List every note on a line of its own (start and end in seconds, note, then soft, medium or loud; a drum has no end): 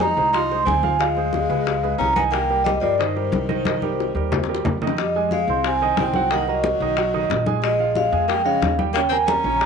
0.00 0.12 F2 medium
0.00 0.12 G#3 medium
0.00 0.32 D#4 medium
0.00 0.12 G#4 medium
0.00 0.12 C5 medium
0.00 0.32 A#5 medium
0.00 high bongo medium
0.00 high conga medium
0.17 0.63 C2 medium
0.17 0.31 G#3 medium
0.17 0.31 G#4 medium
0.17 0.31 C5 medium
0.17 high bongo soft
0.17 high conga soft
0.33 0.48 F3 medium
0.33 0.64 D#4 medium
0.33 0.48 F4 medium
0.33 0.48 F5 medium
0.33 0.65 C6 medium
0.33 high bongo medium
0.33 high conga soft
0.50 0.78 G#3 medium
0.50 0.78 G#4 medium
0.50 0.79 C5 medium
0.50 high bongo soft
0.50 high conga soft
0.65 1.44 D2 medium
0.65 0.97 C4 medium
0.65 1.01 G#5 medium
0.65 high bongo soft
0.65 low bongo medium
0.65 high conga medium
0.83 0.97 F3 medium
0.83 0.97 F4 medium
0.83 0.97 F5 medium
0.83 high bongo soft
0.83 high conga medium
0.99 1.14 F3 medium
0.99 1.95 G#3 medium
0.99 1.14 F4 medium
0.99 2.03 F5 medium
0.99 1.14 F5 medium
0.99 high bongo medium
0.99 high conga soft
1.17 1.44 G#3 medium
1.17 1.44 G#4 medium
1.17 1.44 C5 medium
1.17 high conga soft
1.33 high bongo medium
1.33 high conga medium
1.49 1.96 C#2 medium
1.49 1.77 G#3 medium
1.49 1.77 G#4 medium
1.49 1.77 B4 medium
1.49 high bongo soft
1.66 high bongo medium
1.66 high conga soft
1.83 2.10 G#3 medium
1.83 2.11 G#4 medium
1.83 2.11 B4 medium
1.83 high bongo soft
1.83 high conga soft
1.98 2.77 C2 medium
1.98 2.15 C#4 medium
1.98 2.15 A#5 medium
1.98 high bongo soft
1.98 low bongo medium
1.98 high conga soft
2.16 2.43 D#3 medium
2.16 2.23 B3 medium
2.16 2.43 D#4 medium
2.16 2.44 D#5 medium
2.16 2.24 G#5 medium
2.16 high bongo soft
2.16 high conga medium
2.31 2.63 A#3 medium
2.31 2.67 G5 medium
2.31 high bongo medium
2.31 high conga soft
2.50 2.77 G3 medium
2.50 2.77 G4 medium
2.50 2.77 A#4 medium
2.50 high conga soft
2.64 2.80 G3 medium
2.64 2.82 D#5 medium
2.64 high bongo medium
2.64 high conga medium
2.81 3.29 G2 medium
2.81 2.97 F3 medium
2.81 2.96 G3 medium
2.81 2.97 G4 medium
2.81 2.97 A#4 medium
2.81 2.98 D5 medium
2.81 high bongo soft
2.81 high conga soft
2.98 4.61 D#3 medium
2.98 3.13 D#3 medium
2.98 3.13 D#4 medium
2.98 4.61 C5 medium
2.98 3.13 D#5 medium
2.98 high bongo medium
2.98 high conga soft
3.16 3.43 G3 medium
3.16 3.43 G4 medium
3.16 3.44 A#4 medium
3.16 high bongo soft
3.16 high conga soft
3.32 4.10 C2 medium
3.32 high bongo soft
3.32 low bongo medium
3.32 high conga medium
3.49 3.63 D#3 medium
3.49 3.63 D#4 medium
3.49 3.63 D#5 medium
3.49 high bongo soft
3.49 high conga medium
3.65 3.79 D#3 medium
3.65 3.79 D#4 medium
3.65 3.80 D#5 medium
3.65 high bongo medium
3.65 high conga loud
3.82 4.10 G3 medium
3.82 4.10 G4 medium
3.82 4.10 A#4 medium
3.82 high conga medium
4.00 high bongo medium
4.15 4.61 D#2 medium
4.15 4.43 G3 medium
4.15 4.43 G4 medium
4.15 4.43 A#4 medium
4.15 high bongo soft
4.32 high bongo medium
4.32 low conga medium
4.44 high bongo medium
4.49 4.76 G3 medium
4.49 4.76 G4 medium
4.49 4.76 A#4 medium
4.55 high bongo medium
4.65 5.43 F2 medium
4.65 low bongo medium
4.65 low conga medium
4.82 4.95 D#3 medium
4.82 4.96 D#4 medium
4.82 4.96 D#5 medium
4.82 low conga medium
4.87 low bongo medium
4.98 5.29 G3 medium
4.98 5.30 D#5 medium
4.98 high bongo medium
4.98 high conga soft
5.15 5.43 G#3 medium
5.15 5.43 G#4 medium
5.15 5.43 G#5 medium
5.15 high conga soft
5.31 5.62 G#3 medium
5.31 5.66 F5 medium
5.31 high bongo medium
5.31 high conga medium
5.48 5.94 C2 medium
5.48 5.76 C4 medium
5.48 5.76 C5 medium
5.48 5.76 C6 medium
5.48 high conga soft
5.64 5.96 C4 medium
5.64 6.00 G#5 medium
5.64 high bongo medium
5.64 high conga soft
5.81 6.09 D#3 medium
5.81 6.09 D#4 medium
5.81 6.09 D#5 medium
5.81 high conga soft
5.97 6.75 C2 medium
5.97 6.29 C4 medium
5.97 6.30 G5 medium
5.97 high bongo medium
5.97 low bongo medium
5.97 high conga medium
6.13 6.28 F#3 medium
6.13 6.29 F#4 medium
6.13 6.29 F#5 medium
6.13 high conga medium
6.30 6.45 D#3 medium
6.30 6.47 A#3 medium
6.30 6.45 D#4 medium
6.30 6.45 D#5 medium
6.30 6.49 F#5 medium
6.30 high bongo medium
6.30 high conga soft
6.47 7.43 F#3 medium
6.47 6.75 A#3 medium
6.47 6.75 A#4 medium
6.47 7.44 D#5 medium
6.47 6.75 A#5 medium
6.47 high bongo soft
6.47 high conga soft
6.64 high bongo medium
6.64 high conga medium
6.80 7.27 B1 medium
6.80 6.95 D#3 medium
6.80 6.95 D#4 medium
6.80 6.95 D#5 medium
6.80 high conga soft
6.97 7.11 F#3 medium
6.97 7.11 F#4 medium
6.97 7.11 F#5 medium
6.97 high bongo medium
6.97 high conga soft
7.14 7.41 D#3 medium
7.14 7.41 D#4 medium
7.14 7.41 D#5 medium
7.14 high bongo soft
7.14 high conga soft
7.30 8.07 A#1 medium
7.30 high bongo medium
7.30 low bongo medium
7.30 high conga medium
7.46 7.74 G#3 medium
7.46 7.74 G#4 medium
7.46 7.74 G#5 medium
7.46 high bongo soft
7.46 high conga medium
7.63 7.94 G#3 medium
7.63 7.98 D#5 medium
7.63 high bongo medium
7.63 high conga soft
7.79 8.07 F3 medium
7.79 8.07 F4 medium
7.79 8.07 F5 medium
7.79 high conga soft
7.95 8.26 G#3 medium
7.95 8.27 F5 medium
7.95 high bongo medium
7.95 high conga medium
8.12 8.59 F2 medium
8.12 8.40 G#3 medium
8.12 8.40 G#4 medium
8.12 8.40 G#5 medium
8.12 high conga soft
8.28 8.44 A#3 medium
8.28 8.46 G5 loud
8.28 high bongo medium
8.28 high conga soft
8.44 8.73 C#3 medium
8.44 8.76 G#3 medium
8.44 8.73 C#4 medium
8.44 8.73 C#5 medium
8.44 8.77 F5 medium
8.44 high conga soft
8.62 9.39 D#2 medium
8.62 high bongo medium
8.62 low bongo medium
8.62 high conga medium
8.78 8.92 G3 medium
8.78 8.92 G4 medium
8.78 8.93 G5 medium
8.78 high conga medium
8.93 9.09 C#3 medium
8.93 9.01 A#3 medium
8.93 9.09 C#4 medium
8.93 9.10 C#5 medium
8.93 9.02 G5 medium
8.93 high bongo medium
8.93 high conga soft
9.09 9.39 A#3 medium
9.09 9.17 C4 medium
9.09 9.39 A#4 medium
9.09 9.19 G#5 medium
9.09 9.39 A#5 medium
9.09 high bongo soft
9.09 high conga soft
9.26 9.66 C#4 medium
9.26 9.66 A#5 medium
9.26 high bongo medium
9.26 high conga medium
9.44 9.66 A#1 medium
9.44 9.59 C#3 medium
9.44 9.59 C#4 medium
9.44 9.59 C#5 medium
9.44 high conga soft
9.61 9.66 G3 medium
9.61 9.66 G4 medium
9.61 9.66 G5 medium
9.61 high bongo medium
9.61 high conga soft